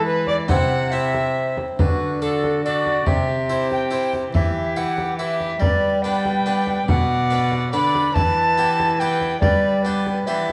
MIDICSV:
0, 0, Header, 1, 6, 480
1, 0, Start_track
1, 0, Tempo, 425532
1, 562, Time_signature, 3, 2, 24, 8
1, 11870, End_track
2, 0, Start_track
2, 0, Title_t, "Recorder"
2, 0, Program_c, 0, 74
2, 70, Note_on_c, 0, 71, 107
2, 311, Note_off_c, 0, 71, 0
2, 328, Note_on_c, 0, 74, 99
2, 396, Note_off_c, 0, 74, 0
2, 550, Note_on_c, 0, 78, 89
2, 1024, Note_on_c, 0, 76, 76
2, 1041, Note_off_c, 0, 78, 0
2, 1765, Note_off_c, 0, 76, 0
2, 2019, Note_on_c, 0, 71, 90
2, 2502, Note_on_c, 0, 69, 71
2, 2519, Note_off_c, 0, 71, 0
2, 2971, Note_off_c, 0, 69, 0
2, 2978, Note_on_c, 0, 74, 87
2, 3464, Note_on_c, 0, 76, 85
2, 3481, Note_off_c, 0, 74, 0
2, 4180, Note_off_c, 0, 76, 0
2, 4197, Note_on_c, 0, 79, 80
2, 4655, Note_off_c, 0, 79, 0
2, 4903, Note_on_c, 0, 76, 79
2, 5378, Note_on_c, 0, 78, 86
2, 5395, Note_off_c, 0, 76, 0
2, 5834, Note_off_c, 0, 78, 0
2, 5841, Note_on_c, 0, 76, 84
2, 6318, Note_on_c, 0, 74, 85
2, 6335, Note_off_c, 0, 76, 0
2, 6792, Note_on_c, 0, 79, 107
2, 6809, Note_off_c, 0, 74, 0
2, 7756, Note_off_c, 0, 79, 0
2, 7770, Note_on_c, 0, 78, 92
2, 8702, Note_off_c, 0, 78, 0
2, 8717, Note_on_c, 0, 83, 101
2, 9183, Note_on_c, 0, 81, 106
2, 9200, Note_off_c, 0, 83, 0
2, 10146, Note_on_c, 0, 79, 93
2, 10163, Note_off_c, 0, 81, 0
2, 10601, Note_off_c, 0, 79, 0
2, 10607, Note_on_c, 0, 74, 83
2, 11082, Note_on_c, 0, 71, 79
2, 11099, Note_off_c, 0, 74, 0
2, 11578, Note_on_c, 0, 76, 81
2, 11595, Note_off_c, 0, 71, 0
2, 11870, Note_off_c, 0, 76, 0
2, 11870, End_track
3, 0, Start_track
3, 0, Title_t, "Violin"
3, 0, Program_c, 1, 40
3, 79, Note_on_c, 1, 71, 86
3, 306, Note_off_c, 1, 71, 0
3, 313, Note_on_c, 1, 74, 73
3, 403, Note_off_c, 1, 74, 0
3, 571, Note_on_c, 1, 78, 85
3, 1042, Note_on_c, 1, 76, 62
3, 1059, Note_off_c, 1, 78, 0
3, 1774, Note_off_c, 1, 76, 0
3, 2035, Note_on_c, 1, 66, 53
3, 2476, Note_off_c, 1, 66, 0
3, 2505, Note_on_c, 1, 66, 48
3, 2972, Note_off_c, 1, 66, 0
3, 2992, Note_on_c, 1, 66, 68
3, 3456, Note_on_c, 1, 67, 54
3, 3473, Note_off_c, 1, 66, 0
3, 4888, Note_off_c, 1, 67, 0
3, 4895, Note_on_c, 1, 67, 63
3, 5830, Note_off_c, 1, 67, 0
3, 5845, Note_on_c, 1, 67, 68
3, 6313, Note_off_c, 1, 67, 0
3, 6329, Note_on_c, 1, 71, 54
3, 6799, Note_off_c, 1, 71, 0
3, 6804, Note_on_c, 1, 71, 64
3, 7742, Note_off_c, 1, 71, 0
3, 7753, Note_on_c, 1, 74, 63
3, 8668, Note_off_c, 1, 74, 0
3, 8711, Note_on_c, 1, 74, 69
3, 9185, Note_off_c, 1, 74, 0
3, 9197, Note_on_c, 1, 71, 64
3, 10137, Note_off_c, 1, 71, 0
3, 10149, Note_on_c, 1, 71, 73
3, 10622, Note_off_c, 1, 71, 0
3, 10628, Note_on_c, 1, 71, 60
3, 11078, Note_off_c, 1, 71, 0
3, 11103, Note_on_c, 1, 71, 56
3, 11870, Note_off_c, 1, 71, 0
3, 11870, End_track
4, 0, Start_track
4, 0, Title_t, "Harpsichord"
4, 0, Program_c, 2, 6
4, 0, Note_on_c, 2, 52, 55
4, 0, Note_on_c, 2, 56, 59
4, 0, Note_on_c, 2, 59, 58
4, 0, Note_on_c, 2, 64, 49
4, 506, Note_off_c, 2, 56, 0
4, 511, Note_off_c, 2, 59, 0
4, 516, Note_off_c, 2, 64, 0
4, 524, Note_off_c, 2, 52, 0
4, 546, Note_on_c, 2, 60, 55
4, 557, Note_on_c, 2, 64, 52
4, 569, Note_on_c, 2, 48, 58
4, 1022, Note_off_c, 2, 60, 0
4, 1031, Note_off_c, 2, 64, 0
4, 1036, Note_on_c, 2, 60, 49
4, 1048, Note_on_c, 2, 64, 49
4, 1750, Note_off_c, 2, 48, 0
4, 1984, Note_off_c, 2, 60, 0
4, 1990, Note_off_c, 2, 64, 0
4, 2022, Note_on_c, 2, 50, 47
4, 2504, Note_on_c, 2, 62, 44
4, 2505, Note_on_c, 2, 69, 52
4, 2847, Note_off_c, 2, 62, 0
4, 2848, Note_off_c, 2, 69, 0
4, 2999, Note_on_c, 2, 62, 44
4, 2999, Note_on_c, 2, 69, 46
4, 3336, Note_off_c, 2, 69, 0
4, 3337, Note_off_c, 2, 62, 0
4, 3414, Note_off_c, 2, 50, 0
4, 3458, Note_on_c, 2, 48, 46
4, 3944, Note_on_c, 2, 64, 43
4, 3944, Note_on_c, 2, 72, 48
4, 4286, Note_off_c, 2, 64, 0
4, 4286, Note_off_c, 2, 72, 0
4, 4407, Note_on_c, 2, 64, 44
4, 4416, Note_on_c, 2, 72, 47
4, 4754, Note_off_c, 2, 64, 0
4, 4759, Note_off_c, 2, 72, 0
4, 4848, Note_off_c, 2, 48, 0
4, 4896, Note_on_c, 2, 52, 54
4, 5375, Note_on_c, 2, 64, 45
4, 5375, Note_on_c, 2, 71, 51
4, 5717, Note_off_c, 2, 64, 0
4, 5717, Note_off_c, 2, 71, 0
4, 5856, Note_on_c, 2, 64, 46
4, 5861, Note_on_c, 2, 71, 51
4, 6197, Note_off_c, 2, 64, 0
4, 6199, Note_off_c, 2, 71, 0
4, 6281, Note_off_c, 2, 52, 0
4, 6314, Note_on_c, 2, 55, 54
4, 6815, Note_on_c, 2, 59, 45
4, 6817, Note_on_c, 2, 62, 47
4, 6827, Note_on_c, 2, 71, 51
4, 7156, Note_off_c, 2, 59, 0
4, 7158, Note_off_c, 2, 62, 0
4, 7164, Note_off_c, 2, 71, 0
4, 7286, Note_on_c, 2, 59, 47
4, 7290, Note_on_c, 2, 62, 51
4, 7298, Note_on_c, 2, 71, 55
4, 7630, Note_off_c, 2, 59, 0
4, 7632, Note_off_c, 2, 62, 0
4, 7637, Note_off_c, 2, 71, 0
4, 7712, Note_off_c, 2, 55, 0
4, 7766, Note_on_c, 2, 47, 52
4, 8241, Note_on_c, 2, 59, 48
4, 8241, Note_on_c, 2, 62, 48
4, 8257, Note_on_c, 2, 71, 56
4, 8584, Note_off_c, 2, 62, 0
4, 8585, Note_off_c, 2, 59, 0
4, 8594, Note_off_c, 2, 71, 0
4, 8674, Note_off_c, 2, 47, 0
4, 8720, Note_on_c, 2, 50, 59
4, 8721, Note_on_c, 2, 59, 47
4, 8723, Note_on_c, 2, 62, 44
4, 8726, Note_on_c, 2, 71, 51
4, 9065, Note_off_c, 2, 59, 0
4, 9066, Note_off_c, 2, 62, 0
4, 9068, Note_off_c, 2, 71, 0
4, 9153, Note_off_c, 2, 50, 0
4, 9202, Note_on_c, 2, 52, 55
4, 9673, Note_on_c, 2, 59, 47
4, 9676, Note_on_c, 2, 64, 46
4, 9686, Note_on_c, 2, 67, 54
4, 10020, Note_off_c, 2, 59, 0
4, 10022, Note_off_c, 2, 64, 0
4, 10028, Note_off_c, 2, 67, 0
4, 10157, Note_on_c, 2, 59, 44
4, 10165, Note_on_c, 2, 64, 49
4, 10168, Note_on_c, 2, 67, 49
4, 10501, Note_off_c, 2, 59, 0
4, 10507, Note_off_c, 2, 64, 0
4, 10509, Note_off_c, 2, 67, 0
4, 10592, Note_off_c, 2, 52, 0
4, 10632, Note_on_c, 2, 55, 51
4, 11108, Note_on_c, 2, 59, 47
4, 11113, Note_on_c, 2, 62, 45
4, 11124, Note_on_c, 2, 67, 48
4, 11457, Note_off_c, 2, 59, 0
4, 11460, Note_off_c, 2, 62, 0
4, 11467, Note_off_c, 2, 67, 0
4, 11550, Note_off_c, 2, 55, 0
4, 11586, Note_on_c, 2, 59, 44
4, 11589, Note_on_c, 2, 52, 48
4, 11593, Note_on_c, 2, 67, 47
4, 11597, Note_on_c, 2, 62, 40
4, 11870, Note_off_c, 2, 52, 0
4, 11870, Note_off_c, 2, 59, 0
4, 11870, Note_off_c, 2, 62, 0
4, 11870, Note_off_c, 2, 67, 0
4, 11870, End_track
5, 0, Start_track
5, 0, Title_t, "Cello"
5, 0, Program_c, 3, 42
5, 0, Note_on_c, 3, 52, 77
5, 560, Note_on_c, 3, 48, 77
5, 577, Note_off_c, 3, 52, 0
5, 1791, Note_off_c, 3, 48, 0
5, 2022, Note_on_c, 3, 50, 60
5, 3414, Note_off_c, 3, 50, 0
5, 3457, Note_on_c, 3, 48, 68
5, 4864, Note_off_c, 3, 48, 0
5, 4886, Note_on_c, 3, 52, 65
5, 6293, Note_off_c, 3, 52, 0
5, 6315, Note_on_c, 3, 55, 73
5, 7729, Note_off_c, 3, 55, 0
5, 7767, Note_on_c, 3, 47, 82
5, 8720, Note_on_c, 3, 50, 69
5, 8736, Note_off_c, 3, 47, 0
5, 9195, Note_off_c, 3, 50, 0
5, 9202, Note_on_c, 3, 52, 76
5, 10609, Note_off_c, 3, 52, 0
5, 10635, Note_on_c, 3, 55, 68
5, 11551, Note_off_c, 3, 55, 0
5, 11592, Note_on_c, 3, 52, 55
5, 11870, Note_off_c, 3, 52, 0
5, 11870, End_track
6, 0, Start_track
6, 0, Title_t, "Frame drum"
6, 304, Note_on_c, 9, 64, 46
6, 417, Note_off_c, 9, 64, 0
6, 553, Note_on_c, 9, 64, 83
6, 666, Note_off_c, 9, 64, 0
6, 1288, Note_on_c, 9, 64, 51
6, 1400, Note_off_c, 9, 64, 0
6, 1774, Note_on_c, 9, 64, 52
6, 1887, Note_off_c, 9, 64, 0
6, 2022, Note_on_c, 9, 64, 84
6, 2135, Note_off_c, 9, 64, 0
6, 2749, Note_on_c, 9, 64, 51
6, 2862, Note_off_c, 9, 64, 0
6, 3225, Note_on_c, 9, 64, 45
6, 3337, Note_off_c, 9, 64, 0
6, 3457, Note_on_c, 9, 64, 77
6, 3570, Note_off_c, 9, 64, 0
6, 4188, Note_on_c, 9, 64, 45
6, 4301, Note_off_c, 9, 64, 0
6, 4660, Note_on_c, 9, 64, 45
6, 4773, Note_off_c, 9, 64, 0
6, 4903, Note_on_c, 9, 64, 78
6, 5016, Note_off_c, 9, 64, 0
6, 5616, Note_on_c, 9, 64, 52
6, 5729, Note_off_c, 9, 64, 0
6, 6096, Note_on_c, 9, 64, 43
6, 6209, Note_off_c, 9, 64, 0
6, 6338, Note_on_c, 9, 64, 83
6, 6451, Note_off_c, 9, 64, 0
6, 7051, Note_on_c, 9, 64, 50
6, 7163, Note_off_c, 9, 64, 0
6, 7522, Note_on_c, 9, 64, 48
6, 7635, Note_off_c, 9, 64, 0
6, 7769, Note_on_c, 9, 64, 88
6, 7882, Note_off_c, 9, 64, 0
6, 8478, Note_on_c, 9, 64, 45
6, 8591, Note_off_c, 9, 64, 0
6, 8966, Note_on_c, 9, 64, 49
6, 9079, Note_off_c, 9, 64, 0
6, 9199, Note_on_c, 9, 64, 77
6, 9312, Note_off_c, 9, 64, 0
6, 9922, Note_on_c, 9, 64, 51
6, 10034, Note_off_c, 9, 64, 0
6, 10393, Note_on_c, 9, 64, 43
6, 10506, Note_off_c, 9, 64, 0
6, 10624, Note_on_c, 9, 64, 81
6, 10737, Note_off_c, 9, 64, 0
6, 11351, Note_on_c, 9, 64, 50
6, 11464, Note_off_c, 9, 64, 0
6, 11870, End_track
0, 0, End_of_file